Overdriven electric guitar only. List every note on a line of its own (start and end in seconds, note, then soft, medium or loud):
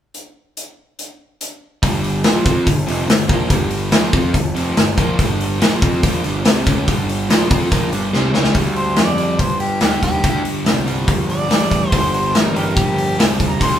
1.83 2.24 G2 loud
1.83 2.24 D3 loud
1.83 2.24 G3 loud
2.24 2.44 A#2 medium
2.24 2.43 F3 medium
2.24 2.45 A#3 medium
2.44 2.65 F3 medium
2.44 2.66 C4 medium
2.44 2.66 F4 loud
2.66 2.83 G2 medium
2.66 2.83 D3 medium
2.86 3.07 F2 medium
2.86 3.07 C3 medium
2.86 3.08 F3 medium
3.07 3.25 G2 medium
3.07 3.25 D3 medium
3.27 3.49 A#2 medium
3.27 3.49 F3 medium
3.27 3.50 A#3 medium
3.49 3.91 G2 medium
3.49 3.91 D3 loud
3.49 3.91 G3 loud
3.91 4.12 A#2 medium
3.91 4.11 F3 loud
3.91 4.13 A#3 loud
4.13 4.33 F3 medium
4.13 4.34 C4 medium
4.13 4.34 F4 medium
4.33 4.51 G2 medium
4.33 4.51 D3 medium
4.55 4.76 F2 medium
4.55 4.76 C3 medium
4.55 4.76 F3 medium
4.76 4.93 G2 medium
4.76 4.94 D3 medium
4.97 5.18 A#2 loud
4.97 5.18 F3 loud
4.97 5.18 A#3 loud
5.18 5.60 G2 medium
5.18 5.59 D3 loud
5.18 5.60 G3 loud
5.60 5.81 A#2 medium
5.60 5.80 F3 medium
5.60 5.81 A#3 loud
5.81 6.02 F3 loud
5.81 6.02 C4 loud
5.81 6.02 F4 loud
6.03 6.23 A#2 medium
6.03 6.24 F3 loud
6.03 6.24 A#3 medium
6.25 6.45 G2 medium
6.25 6.44 D3 loud
6.25 6.43 G3 medium
6.44 6.65 C3 medium
6.44 6.65 G3 loud
6.44 6.65 C4 loud
6.66 6.86 C#3 medium
6.66 6.87 G#3 loud
6.66 6.87 C#4 loud
6.86 7.28 G2 loud
6.86 7.28 D3 loud
6.86 7.28 G3 loud
7.29 7.50 A#2 medium
7.29 7.49 F3 medium
7.29 7.50 A#3 loud
7.50 7.70 F3 medium
7.50 7.70 C4 loud
7.50 7.71 F4 medium
7.70 7.91 A#2 medium
7.70 7.92 F3 medium
7.70 7.92 A#3 medium
7.93 8.13 G2 medium
7.93 8.12 D3 medium
7.93 8.12 G3 medium
8.13 8.33 C3 loud
8.13 8.33 G3 loud
8.13 8.33 C4 loud
8.33 8.54 C#3 medium
8.33 8.54 G#3 loud
8.33 8.54 C#4 loud
8.54 9.19 G2 medium
8.54 9.17 D3 medium
8.54 9.17 G3 loud
9.17 9.81 G2 medium
9.17 9.80 D3 medium
9.17 9.82 G3 medium
9.81 10.22 G2 medium
9.81 10.23 D3 medium
9.81 10.25 G3 medium
10.23 10.88 G2 medium
10.23 10.86 D3 loud
10.23 10.85 G3 medium
10.86 11.48 G2 medium
10.86 11.48 D3 medium
10.86 11.50 G3 medium
11.49 11.91 G2 medium
11.49 11.90 D3 medium
11.49 11.93 G3 medium
11.91 12.55 G2 medium
11.91 12.54 D3 loud
11.91 12.53 G3 medium
12.54 13.17 G2 medium
12.54 13.17 D3 medium
12.54 13.19 G3 medium
13.17 13.59 G2 medium
13.17 13.59 D3 medium
13.17 13.61 G3 medium
13.59 13.79 G2 medium
13.59 13.79 D3 loud
13.59 13.79 G3 loud